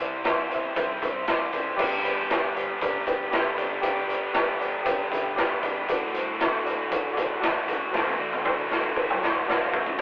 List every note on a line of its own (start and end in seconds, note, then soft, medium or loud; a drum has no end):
0.00 0.12 C2 loud
0.00 0.24 C3 medium
0.00 0.76 G3 loud
0.00 0.22 C4 medium
0.00 0.25 C4 medium
0.00 0.23 E4 loud
0.00 0.25 E4 medium
0.00 0.20 E4 medium
0.00 0.25 G4 loud
0.00 0.27 G4 medium
0.00 0.25 C5 loud
0.00 0.27 C5 medium
0.00 0.21 C5 medium
0.00 0.21 D5 medium
0.24 0.44 C2 medium
0.24 0.52 C4 medium
0.24 0.45 E4 medium
0.24 0.51 E4 medium
0.24 0.51 G4 medium
0.24 0.46 C5 medium
0.24 0.49 C5 medium
0.24 0.46 E5 medium
0.24 snare loud
0.24 closed hi-hat medium
0.50 0.69 A1 medium
0.50 0.75 C4 medium
0.50 0.71 E4 medium
0.50 0.76 E4 medium
0.50 0.77 G4 medium
0.50 0.77 C5 medium
0.50 0.72 C5 medium
0.50 0.72 E5 loud
0.50 closed hi-hat medium
0.75 0.95 C2 loud
0.75 1.52 C3 loud
0.75 1.77 G3 medium
0.75 1.27 C4 loud
0.75 0.96 E4 medium
0.75 1.27 E4 loud
0.75 1.29 G4 medium
0.75 0.97 C5 medium
0.75 1.29 C5 medium
0.75 0.97 E5 loud
0.75 kick loud
0.75 closed hi-hat loud
1.01 1.21 C2 medium
1.01 1.25 C4 medium
1.01 1.22 E4 medium
1.01 1.26 E4 medium
1.01 1.28 G4 medium
1.01 1.28 C5 medium
1.01 1.23 C5 medium
1.01 1.23 E5 loud
1.01 kick medium
1.01 closed hi-hat medium
1.27 1.47 C2 medium
1.27 1.54 C4 medium
1.27 1.48 E4 loud
1.27 1.54 E4 medium
1.27 1.53 G4 medium
1.27 1.49 C5 medium
1.27 1.52 C5 medium
1.27 1.49 D5 loud
1.27 snare loud
1.27 closed hi-hat loud
1.49 1.72 A1 medium
1.49 1.70 C4 medium
1.49 1.71 D4 medium
1.49 1.73 E4 medium
1.49 closed hi-hat medium
1.53 1.78 C4 medium
1.53 1.78 E4 medium
1.53 1.73 E4 medium
1.53 1.74 F4 medium
1.53 1.79 G4 medium
1.53 1.77 C5 medium
1.53 1.74 C5 medium
1.53 1.74 D5 medium
1.53 kick medium
1.61 1.76 G4 medium
1.61 1.77 A4 medium
1.66 1.78 B4 medium
1.66 1.80 C5 medium
1.72 1.78 D5 medium
1.72 1.82 E5 medium
1.76 1.98 G1 loud
1.76 2.80 G2 medium
1.76 2.29 D3 loud
1.76 2.04 G3 loud
1.76 2.04 B3 loud
1.76 2.03 D4 medium
1.76 1.98 G4 loud
1.76 2.02 G4 loud
1.76 1.98 B4 loud
1.76 1.98 D5 loud
1.76 5.85 D5 medium
1.76 1.84 F5 medium
1.76 kick loud
1.76 crash medium
1.80 5.85 B3 medium
1.80 5.86 G4 medium
2.02 2.23 E2 medium
2.02 2.28 G3 medium
2.02 2.29 B3 medium
2.02 2.29 D4 medium
2.02 2.30 G4 medium
2.02 2.24 G4 medium
2.02 2.25 B4 medium
2.02 2.25 D5 medium
2.02 closed hi-hat medium
2.28 2.68 G1 medium
2.28 2.56 G3 medium
2.28 2.56 B3 medium
2.28 2.55 D4 medium
2.28 2.50 G4 medium
2.28 2.53 G4 medium
2.28 2.51 B4 medium
2.28 2.51 E5 medium
2.28 snare loud
2.28 closed hi-hat loud
2.54 2.80 G3 medium
2.54 2.80 B3 medium
2.54 2.81 D4 medium
2.54 2.81 G4 medium
2.54 2.76 G4 medium
2.54 2.76 B4 medium
2.54 closed hi-hat medium
2.59 2.77 D5 medium
2.80 3.00 G1 loud
2.80 3.57 G2 medium
2.80 3.58 D3 medium
2.80 3.30 G3 loud
2.80 3.30 B3 loud
2.80 3.32 D4 loud
2.80 3.02 G4 medium
2.80 3.32 G4 medium
2.80 3.02 B4 medium
2.80 3.03 D5 medium
2.80 kick loud
2.80 closed hi-hat loud
3.05 3.26 D1 medium
3.05 3.30 G3 medium
3.05 3.31 B3 medium
3.05 3.33 D4 medium
3.05 3.33 G4 medium
3.05 3.27 G4 medium
3.05 3.27 B4 medium
3.05 3.28 D5 medium
3.05 kick medium
3.05 closed hi-hat medium
3.31 3.51 G1 medium
3.31 3.58 G3 medium
3.31 3.58 B3 medium
3.31 3.58 D4 medium
3.31 3.52 G4 loud
3.31 3.56 G4 medium
3.31 3.52 B4 medium
3.31 3.53 E5 loud
3.31 snare loud
3.31 closed hi-hat medium
3.57 3.77 G1 medium
3.57 3.82 G3 medium
3.57 3.83 B3 medium
3.57 3.84 D4 medium
3.57 3.84 G4 medium
3.57 3.78 G4 medium
3.57 3.78 B4 medium
3.57 3.79 D5 medium
3.57 kick medium
3.57 closed hi-hat medium
3.82 4.21 G1 loud
3.82 4.34 G2 loud
3.82 4.34 D3 loud
3.82 4.09 G3 loud
3.82 4.09 B3 loud
3.82 4.08 D4 loud
3.82 4.03 G4 loud
3.82 4.07 G4 loud
3.82 4.04 B4 loud
3.82 4.04 D5 loud
3.82 kick loud
3.82 closed hi-hat medium
4.07 4.34 G3 medium
4.07 4.33 B3 medium
4.07 4.36 D4 medium
4.07 4.29 G4 medium
4.07 4.35 G4 medium
4.07 4.29 B4 medium
4.07 4.30 D5 loud
4.07 closed hi-hat medium
4.33 4.54 G1 medium
4.33 4.60 G3 medium
4.33 4.59 B3 medium
4.33 4.59 D4 loud
4.33 4.54 G4 medium
4.33 4.58 G4 medium
4.33 4.54 B4 medium
4.33 4.55 D5 medium
4.33 snare loud
4.33 closed hi-hat medium
4.58 4.80 E2 medium
4.58 4.84 G3 medium
4.58 4.85 B3 medium
4.58 4.86 D4 medium
4.58 4.80 G4 medium
4.58 4.85 G4 medium
4.58 4.80 B4 medium
4.58 4.81 D5 medium
4.58 closed hi-hat medium
4.83 5.05 G1 loud
4.83 5.62 G2 medium
4.83 5.62 D3 loud
4.83 5.35 G3 medium
4.83 5.36 B3 loud
4.83 5.39 D4 loud
4.83 5.05 G4 medium
4.83 5.38 G4 medium
4.83 5.05 B4 medium
4.83 5.06 D5 loud
4.83 kick loud
4.83 closed hi-hat medium
5.10 5.31 G1 medium
5.10 5.35 G3 medium
5.10 5.36 B3 medium
5.10 5.38 D4 medium
5.10 5.31 G4 medium
5.10 5.38 G4 medium
5.10 5.31 B4 medium
5.10 5.32 E5 loud
5.10 5.23 B5 medium
5.10 kick medium
5.10 closed hi-hat medium
5.24 5.36 G5 medium
5.36 5.56 G1 loud
5.36 5.64 G3 medium
5.36 5.63 B3 medium
5.36 5.64 D4 medium
5.36 5.57 G4 loud
5.36 5.62 G4 medium
5.36 5.58 B4 loud
5.36 5.58 D5 loud
5.36 snare loud
5.36 closed hi-hat medium
5.62 5.82 E1 medium
5.62 5.88 G3 medium
5.62 5.88 B3 medium
5.62 9.14 D4 medium
5.62 5.83 G4 medium
5.62 5.87 G4 medium
5.62 5.84 B4 medium
5.62 5.84 D5 loud
5.62 kick medium
5.62 closed hi-hat medium
5.88 6.08 D1 medium
5.88 6.91 D2 loud
5.88 6.40 A2 loud
5.88 6.17 D3 loud
5.88 6.16 A3 loud
5.88 9.97 A3 medium
5.88 6.09 F#4 loud
5.88 6.15 F#4 loud
5.88 9.97 F#4 medium
5.88 6.10 A4 loud
5.88 6.10 D5 loud
5.88 kick loud
5.88 closed hi-hat medium
6.13 6.32 C2 medium
6.13 6.34 F#4 medium
6.13 6.43 F#4 medium
6.13 6.35 A4 medium
6.13 6.35 C5 medium
6.13 closed hi-hat medium
6.17 6.41 D3 medium
6.17 6.42 A3 medium
6.39 6.78 D1 medium
6.39 6.91 A2 medium
6.39 6.67 D3 medium
6.39 6.67 A3 medium
6.39 6.60 F#4 medium
6.39 6.65 F#4 medium
6.39 6.60 A4 medium
6.39 6.61 E5 medium
6.39 snare loud
6.39 closed hi-hat loud
6.63 6.94 A3 medium
6.63 6.85 F#4 medium
6.63 6.93 F#4 medium
6.63 6.85 A4 medium
6.63 6.86 D5 medium
6.63 closed hi-hat medium
6.67 6.92 D3 medium
6.88 7.11 D1 medium
6.88 7.92 D2 medium
6.88 7.10 F#4 medium
6.88 7.11 A4 medium
6.88 7.11 D5 loud
6.88 kick loud
6.88 closed hi-hat loud
6.92 7.40 A2 loud
6.92 7.43 D3 medium
6.92 7.43 A3 medium
6.92 7.43 F#4 loud
7.13 7.36 A1 medium
7.13 7.35 F#4 loud
7.13 7.45 F#4 medium
7.13 7.36 A4 medium
7.13 7.36 D5 loud
7.17 7.43 D3 medium
7.17 7.44 A3 medium
7.17 kick medium
7.17 closed hi-hat medium
7.40 7.61 D1 medium
7.40 7.93 A2 medium
7.40 7.69 D3 medium
7.40 7.61 F#4 loud
7.40 7.62 A4 loud
7.40 7.63 D5 loud
7.40 snare loud
7.40 closed hi-hat loud
7.44 7.68 A3 medium
7.44 7.67 F#4 medium
7.66 7.87 D1 medium
7.66 7.94 A3 medium
7.66 7.87 F#4 medium
7.66 7.94 F#4 medium
7.66 7.88 A4 medium
7.66 7.88 D5 medium
7.66 kick medium
7.66 closed hi-hat medium
7.70 7.93 D3 medium
7.91 8.32 D1 medium
7.91 8.45 D2 loud
7.91 8.44 A2 loud
7.91 8.21 D3 loud
7.91 8.20 A3 loud
7.91 8.13 F#4 loud
7.91 8.19 F#4 loud
7.91 8.14 A4 loud
7.91 8.14 C5 loud
7.91 kick loud
7.91 snare medium
8.07 high tom medium
8.17 8.45 A3 medium
8.17 8.39 F#4 medium
8.17 8.47 F#4 medium
8.17 8.39 A4 medium
8.17 8.40 D5 medium
8.22 8.44 D3 medium
8.33 high tom medium
8.43 8.64 D1 medium
8.43 8.97 A2 medium
8.43 8.73 D3 medium
8.43 8.72 A3 medium
8.43 8.64 F#4 medium
8.43 8.65 A4 medium
8.43 8.65 D5 medium
8.43 mid tom medium
8.48 8.71 F#4 medium
8.69 8.89 C2 medium
8.69 8.98 A3 medium
8.69 8.91 F#4 medium
8.69 8.99 F#4 medium
8.69 8.91 A4 medium
8.69 8.92 D5 medium
8.69 snare medium
8.74 8.97 D3 medium
8.84 kick medium
8.96 9.16 D1 loud
8.96 9.74 D2 medium
8.96 9.46 A2 medium
8.96 9.47 D3 loud
8.96 9.48 A3 loud
8.96 9.17 F#4 medium
8.96 9.17 A4 medium
8.96 9.17 C5 medium
8.96 kick loud
9.00 9.49 F#4 loud
9.10 mid tom medium
9.19 9.41 D1 medium
9.19 9.48 A3 medium
9.19 9.41 F#4 medium
9.19 9.49 F#4 medium
9.19 9.42 A4 medium
9.19 9.43 D5 loud
9.19 snare medium
9.25 9.47 D3 medium
9.46 9.67 D1 medium
9.46 9.97 A2 medium
9.46 9.75 D3 medium
9.46 9.73 A3 medium
9.46 9.68 F#4 loud
9.46 9.73 F#4 medium
9.46 9.68 A4 loud
9.46 9.69 D5 loud
9.46 snare loud
9.61 floor tom medium
9.72 9.93 D1 medium
9.72 9.98 A3 medium
9.72 9.93 F#4 medium
9.72 9.98 F#4 medium
9.72 9.93 A4 medium
9.72 9.94 E5 loud
9.72 kick loud
9.76 9.98 D3 medium
9.87 kick medium
9.98 10.02 D2 loud
9.98 10.02 A2 loud
9.98 10.02 D3 loud
9.98 10.02 F#4 loud
9.98 crash loud